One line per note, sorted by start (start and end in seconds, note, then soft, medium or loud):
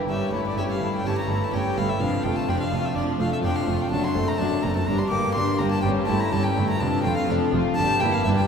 0.08 0.16 G1 soft
0.08 0.16 G2 soft
0.08 0.30 G2 soft
0.08 0.31 G3 soft
0.08 0.31 C#4 soft
0.08 0.31 G4 soft
0.08 0.31 E5 medium
0.32 0.40 G1 soft
0.32 0.41 G2 soft
0.32 0.55 G2 soft
0.32 0.56 A3 soft
0.32 0.57 E4 soft
0.32 0.57 A4 soft
0.32 0.45 C#5 medium
0.47 0.58 D5 medium
0.56 0.64 G1 soft
0.56 0.64 G2 soft
0.56 0.79 G2 soft
0.56 0.80 G3 soft
0.56 0.92 A3 soft
0.56 0.81 C#4 soft
0.56 0.92 E4 soft
0.56 0.81 G4 soft
0.56 0.92 C#5 soft
0.56 0.63 E5 medium
0.71 0.93 F5 medium
0.79 0.88 G1 soft
0.79 0.89 G2 soft
0.79 1.03 G2 soft
0.79 1.04 A3 soft
0.79 1.04 E4 soft
0.79 1.04 A4 soft
0.96 1.08 G5 medium
1.03 1.13 G1 soft
1.03 1.13 G2 soft
1.03 1.27 G2 soft
1.03 1.27 G3 soft
1.03 1.40 A3 soft
1.03 1.26 C#4 soft
1.03 1.40 E4 soft
1.03 1.27 G4 soft
1.03 1.40 C#5 soft
1.03 1.18 A5 medium
1.18 1.46 A#5 medium
1.28 1.37 G1 soft
1.28 1.36 G2 soft
1.28 1.50 G2 soft
1.28 1.52 A3 soft
1.28 1.52 E4 soft
1.28 1.53 A4 soft
1.44 1.53 A5 medium
1.53 1.61 G1 soft
1.53 1.61 G2 soft
1.53 1.74 G2 soft
1.53 1.77 G3 soft
1.53 1.87 A3 soft
1.53 1.77 C#4 soft
1.53 1.88 E4 soft
1.53 1.77 G4 soft
1.53 1.88 C#5 soft
1.53 1.79 G5 medium
1.76 1.86 G1 soft
1.76 1.85 G2 soft
1.76 1.99 G2 soft
1.76 2.00 A3 soft
1.76 2.01 E4 soft
1.76 2.00 A4 soft
1.76 1.91 F5 medium
1.89 2.02 E5 medium
1.99 2.09 F1 soft
1.99 2.09 F2 medium
1.99 2.22 F2 soft
1.99 2.22 F3 soft
1.99 2.23 D4 soft
1.99 2.22 F4 soft
1.99 2.25 F5 medium
2.23 2.33 F1 soft
2.23 2.33 F2 soft
2.23 2.46 F2 soft
2.23 2.49 A3 soft
2.23 2.49 F4 soft
2.23 2.48 A4 soft
2.23 2.37 G5 medium
2.36 2.50 A5 medium
2.48 2.57 F1 soft
2.48 2.56 F2 medium
2.48 2.70 F2 soft
2.48 2.72 F3 soft
2.48 2.84 A3 soft
2.48 2.73 D4 soft
2.48 2.84 D4 soft
2.48 2.72 F4 soft
2.48 2.84 D5 soft
2.48 2.59 G5 medium
2.60 2.87 F5 medium
2.71 2.81 F1 soft
2.71 2.80 F2 soft
2.71 2.94 F2 soft
2.71 2.96 A3 soft
2.71 2.96 F4 soft
2.71 2.96 A4 soft
2.85 2.95 E5 medium
2.95 3.05 F1 medium
2.95 3.04 F2 medium
2.95 3.19 F2 soft
2.95 3.18 F3 soft
2.95 3.32 A3 soft
2.95 3.19 D4 soft
2.95 3.32 D4 soft
2.95 3.18 F4 soft
2.95 3.03 D5 medium
2.95 3.32 D5 soft
3.20 3.29 F1 soft
3.20 3.28 F2 soft
3.20 3.42 F2 soft
3.20 3.44 A3 soft
3.20 3.45 F4 soft
3.20 3.44 A4 soft
3.20 3.32 F5 medium
3.33 3.37 E5 medium
3.44 3.52 F1 medium
3.44 3.52 F2 soft
3.44 3.66 F2 soft
3.44 3.68 F3 soft
3.44 3.79 A3 soft
3.44 3.79 D4 soft
3.44 3.69 D4 soft
3.44 3.68 F4 soft
3.44 3.79 D5 soft
3.44 3.57 G5 medium
3.56 3.82 F5 medium
3.67 3.76 F1 soft
3.67 3.76 F2 medium
3.67 3.91 F2 soft
3.67 3.92 A3 soft
3.67 3.93 F4 soft
3.67 3.92 A4 soft
3.81 3.91 G5 medium
3.91 4.00 F#1 medium
3.91 4.01 F#2 medium
3.91 4.14 F#2 soft
3.91 4.14 F#3 soft
3.91 4.15 D4 soft
3.91 4.15 F#4 medium
3.91 4.06 A5 medium
4.04 4.29 C6 medium
4.15 4.24 F#1 medium
4.15 4.38 F#2 soft
4.15 4.24 F#2 soft
4.15 4.40 A3 soft
4.15 4.40 C4 soft
4.15 4.40 A4 soft
4.28 4.39 A#5 medium
4.38 4.49 F#1 medium
4.38 4.62 F#2 soft
4.38 4.49 F#2 medium
4.38 4.64 F#3 soft
4.38 4.75 A3 soft
4.38 4.64 D4 soft
4.38 4.76 D4 soft
4.38 4.64 F#4 soft
4.38 4.76 D5 soft
4.38 4.64 A5 medium
4.63 4.73 F#1 medium
4.63 4.72 F#2 medium
4.63 4.86 F#2 soft
4.63 4.89 A3 soft
4.63 4.88 C4 soft
4.63 4.88 A4 soft
4.63 4.76 A#5 medium
4.76 4.88 A5 medium
4.86 4.96 G1 medium
4.86 4.96 G2 medium
4.86 5.10 G2 soft
4.86 5.11 G3 soft
4.86 5.11 D4 soft
4.86 5.11 A#4 soft
4.86 5.00 A#5 medium
4.98 5.09 C6 medium
5.10 5.21 G1 soft
5.10 5.20 G2 medium
5.10 5.34 G2 soft
5.10 5.36 A#3 soft
5.10 5.37 A#3 soft
5.10 5.36 G4 soft
5.10 5.34 D6 medium
5.35 5.45 G1 medium
5.35 5.44 G2 medium
5.35 5.58 G2 soft
5.35 5.61 G3 soft
5.35 5.72 A#3 soft
5.35 5.61 D4 soft
5.35 5.72 D4 soft
5.35 5.60 A#4 soft
5.35 5.72 D5 soft
5.35 5.60 C6 medium
5.58 5.68 G1 medium
5.58 5.82 G2 soft
5.58 5.69 G2 medium
5.58 5.84 A#3 soft
5.58 5.85 A#3 soft
5.58 5.83 G4 soft
5.58 5.71 A#5 medium
5.71 5.81 A5 medium
5.82 5.93 G1 medium
5.82 5.92 G2 medium
5.82 6.07 G2 soft
5.82 6.07 G3 soft
5.82 6.07 C#4 medium
5.82 6.07 G4 medium
5.82 5.90 G5 medium
6.06 6.17 G1 medium
6.06 6.17 G2 medium
6.06 6.31 G2 soft
6.06 6.33 A3 soft
6.06 6.33 E4 soft
6.06 6.22 A5 medium
6.20 6.34 A#5 medium
6.32 6.42 G1 medium
6.32 6.41 G2 medium
6.32 6.55 G2 soft
6.32 6.57 G3 medium
6.32 6.68 A3 soft
6.32 6.57 C#4 medium
6.32 6.69 C#4 soft
6.32 6.57 G4 soft
6.32 6.69 A4 soft
6.32 6.45 A5 medium
6.43 6.68 G5 medium
6.56 6.66 G1 medium
6.56 6.65 G2 medium
6.56 6.79 G2 soft
6.56 6.81 A3 soft
6.56 6.81 E4 soft
6.70 6.82 A#5 medium
6.79 6.90 F1 medium
6.79 6.90 F2 medium
6.79 7.03 F2 soft
6.79 7.02 F3 soft
6.79 7.04 D4 soft
6.79 7.04 A4 soft
6.79 7.03 A5 medium
7.04 7.13 F1 medium
7.04 7.14 F2 medium
7.04 7.27 F2 soft
7.04 7.29 A3 soft
7.04 7.29 F4 soft
7.04 7.30 F4 soft
7.04 7.16 G5 medium
7.17 7.29 F5 medium
7.29 7.38 F1 medium
7.29 7.51 F2 soft
7.29 7.38 F2 medium
7.29 7.53 F3 soft
7.29 7.65 A3 soft
7.29 7.54 D4 soft
7.29 7.65 D4 soft
7.29 7.54 A4 soft
7.29 7.65 A4 soft
7.54 7.62 F1 medium
7.54 7.62 F2 medium
7.54 7.76 F2 soft
7.54 7.78 A3 soft
7.54 7.78 F4 soft
7.54 7.79 F4 soft
7.75 7.87 G1 medium
7.75 7.86 G2 medium
7.75 8.00 G2 soft
7.75 8.00 G3 soft
7.75 8.01 D4 medium
7.75 8.01 G4 medium
7.75 8.01 A5 medium
8.00 8.10 G1 medium
8.00 8.10 G2 soft
8.00 8.24 G2 soft
8.00 8.27 A#3 soft
8.00 8.26 E4 soft
8.00 8.27 E4 soft
8.00 8.15 G5 medium
8.14 8.24 F5 medium
8.24 8.34 G1 medium
8.24 8.35 G2 medium
8.24 8.47 G2 soft
8.24 8.47 A#3 soft
8.24 8.47 D4 soft
8.24 8.47 E4 soft
8.24 8.47 G4 soft
8.24 8.29 E5 medium
8.28 8.47 G3 soft
8.37 8.47 G5 medium